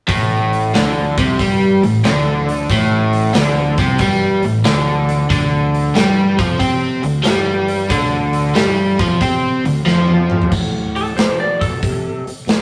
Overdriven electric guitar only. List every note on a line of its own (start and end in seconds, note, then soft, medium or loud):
0.09 0.73 A2 loud
0.75 1.17 D3 loud
1.19 1.39 C3 medium
1.40 1.82 G3 medium
1.83 2.00 A2 medium
2.05 2.69 D3 loud
2.71 3.35 A2 loud
3.35 3.78 D3 loud
3.80 4.00 C3 medium
4.01 4.43 G3 medium
4.45 4.61 A2 medium
4.65 5.29 D3 loud
5.30 5.95 D3 loud
5.95 6.38 G3 loud
6.38 6.60 F3 medium
6.59 7.02 C4 loud
7.03 7.21 D3 medium
7.24 7.89 G3 loud
7.90 8.55 D3 loud
8.55 8.98 G3 loud
8.99 9.20 F3 medium
9.22 9.64 C4 medium
9.65 9.83 D3 medium
9.86 10.51 F3 loud